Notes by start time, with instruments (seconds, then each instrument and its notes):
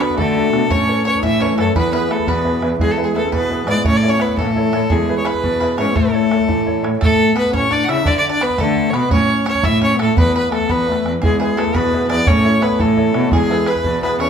0.00 duduk B3, upright piano D4 F#4 A4, five-string banjo B4, fiddle B4, bodhran
0.10 bodhran
0.16 cello D3, duduk A3, upright piano A3, five-string banjo A4, fiddle A4, bodhran
0.35 upright piano D4 F#4 A4, bodhran
0.53 cello B2, upright piano D4 F#4 A4, bodhran
0.70 cello A2, upright piano A3, duduk C#4, five-string banjo C#5, fiddle C#5, bodhran
0.88 upright piano A4 B4 C#5
1.05 duduk C#4, upright piano A4 B4 C#5, five-string banjo C#5, fiddle C#5
1.15 bodhran
1.22 cello A2, upright piano E3, duduk E4, five-string banjo E5, fiddle E5, bodhran
1.40 duduk C#4, upright piano A4 B4 C#5, five-string banjo C#5, fiddle C#5, bodhran
1.56 cello F#2, duduk A3, five-string banjo A4, upright piano A4 B4 C#5, fiddle A4, bodhran
1.75 cello E2, upright piano E3, duduk B3, five-string banjo B4, fiddle B4, bodhran
1.92 duduk B3, upright piano E4 G#4 B4, five-string banjo B4, fiddle B4
2.10 duduk A3, upright piano E4 G#4 B4, fiddle A4, bodhran
2.19 duduk A3, bodhran
2.27 cello E2, upright piano B2, duduk B3, five-string banjo B4, fiddle B4, bodhran
2.45 upright piano E4 G#4 B4, bodhran
2.62 cello E2, upright piano E4 G#4 B4, bodhran
2.79 cello E2, upright piano E3, duduk G#3, five-string banjo G#4, fiddle G#4, bodhran
2.91 fiddle A4
2.97 upright piano E4 G#4 B4
3.02 duduk G#3, five-string banjo G#4, fiddle G#4
3.14 duduk A3, upright piano E4 G#4 B4, five-string banjo A4, fiddle A4
3.24 duduk C#4, bodhran
3.32 cello E2, upright piano B2, duduk B3, five-string banjo B4, fiddle B4, bodhran
3.50 upright piano E4 G#4 B4, bodhran
3.67 cello G#2, upright piano E4 G#4 B4, five-string banjo D5, fiddle D5, bodhran
3.84 cello A2, upright piano A3, duduk C#4, five-string banjo C#5, fiddle C#5, bodhran
3.97 fiddle D5
4.03 upright piano E4 A4 C#5
4.08 duduk C#4, five-string banjo C#5, fiddle C#5
4.20 duduk B3, upright piano E4 A4 C#5, fiddle B4, five-string banjo B4, bodhran
4.29 bodhran
4.37 cello A2, upright piano E3, duduk A3, five-string banjo A4, fiddle A4, bodhran
4.55 upright piano E4 A4 C#5, bodhran
4.73 cello A2, upright piano E4 A4 C#5, five-string banjo A4, bodhran
4.90 cello E2, upright piano E3, duduk G#3, five-string banjo G#4, fiddle G#4, bodhran
5.09 upright piano E4 G#4 B4
5.18 fiddle C#5
5.25 upright piano E4 G#4 B4, five-string banjo B4, fiddle B4, bodhran
5.34 bodhran
5.43 cello E2, upright piano B2, bodhran
5.60 upright piano E4 G#4 B4, five-string banjo B4, bodhran
5.78 cello G#2, duduk C#4, upright piano E4 G#4 B4, five-string banjo C#5, fiddle C#5, bodhran
5.95 cello A2, duduk A3, upright piano A3, five-string banjo A4, fiddle A4, bodhran
6.13 upright piano E4 A4 C#5
6.31 upright piano E4 A4 C#5, bodhran
6.40 bodhran
6.48 cello A2, upright piano E3, bodhran
6.66 upright piano E4 A4 C#5, bodhran
6.83 cello A2, upright piano E4 A4 C#5, bodhran
7.00 cello A2, duduk A3, five-string banjo A4, fiddle A4, bodhran
7.34 duduk B3, five-string banjo B4, bodhran
7.39 fiddle B4
7.46 bodhran
7.53 cello A2, duduk C#4, five-string banjo C#5, fiddle C#5, bodhran
7.70 duduk D4, five-string banjo D5, fiddle D5, bodhran
7.84 fiddle F#5
7.88 cello C#3, duduk E4, five-string banjo E5, fiddle E5, bodhran
8.05 cello D3, duduk D4, five-string banjo D5, fiddle D5, bodhran
8.18 fiddle D5
8.29 duduk D4, five-string banjo D5, fiddle D5
8.41 duduk B3, five-string banjo B4, fiddle B4, bodhran
8.50 bodhran
8.58 cello D3, duduk A3, five-string banjo A4, fiddle A4, bodhran
8.76 bodhran
8.90 cello B2, duduk B3, five-string banjo B4, fiddle C#5, bodhran
8.96 fiddle B4
9.11 cello A2, duduk C#4, five-string banjo C#5, fiddle C#5, bodhran
9.46 duduk C#4, five-string banjo C#5, fiddle C#5, bodhran
9.55 bodhran
9.63 cello A2, duduk E4, five-string banjo E5, fiddle E5, bodhran
9.81 duduk C#4, five-string banjo C#5, fiddle C#5, bodhran
9.98 cello A2, duduk A3, five-string banjo A4, fiddle A4, bodhran
10.16 cello E2, duduk B3, five-string banjo B4, fiddle B4, bodhran
10.36 five-string banjo B4, fiddle B4
10.52 duduk A3, five-string banjo A4, fiddle A4, bodhran
10.61 bodhran
10.69 cello E2, duduk B3, five-string banjo B4, fiddle B4, bodhran
10.88 duduk A3, bodhran
10.92 five-string banjo A4
11.05 cello E2, bodhran
11.22 cello E2, upright piano E3, duduk G#3, five-string banjo G#4, fiddle G#4, bodhran
11.39 duduk G#3, upright piano E4 G#4 B4, five-string banjo G#4, fiddle G#4
11.56 duduk A3, upright piano E4 G#4 B4, five-string banjo A4, fiddle A4, bodhran
11.67 bodhran
11.74 cello E2, upright piano B2, duduk B3, five-string banjo B4, fiddle B4, bodhran
11.92 upright piano E4 G#4 B4, bodhran
12.09 cello E2, upright piano E4 G#4 B4, five-string banjo D5, fiddle D5, bodhran
12.27 cello A2, upright piano A3, duduk C#4, fiddle C#5, five-string banjo C#5, bodhran
12.44 upright piano E4 A4 C#5
12.61 duduk B3, upright piano E4 A4 C#5, five-string banjo B4, fiddle B4, bodhran
12.71 bodhran
12.79 cello A2, upright piano E3, duduk A3, five-string banjo A4, fiddle A4, bodhran
12.97 upright piano E4 A4 C#5, bodhran
13.14 cello B2, upright piano E4 A4 C#5, bodhran
13.31 cello E2, upright piano E3, duduk G#3, five-string banjo G#4, fiddle G#4, bodhran
13.50 upright piano E4 G#4 B4, five-string banjo A4
13.66 upright piano E4 G#4 B4, fiddle B4, five-string banjo B4, bodhran
13.76 bodhran
13.84 cello E2, upright piano B2, bodhran
14.02 duduk B3, upright piano E4 G#4 B4, fiddle B4, five-string banjo B4, bodhran
14.20 cello E2, duduk C#4, upright piano E4 G#4 B4, five-string banjo C#5, fiddle C#5, bodhran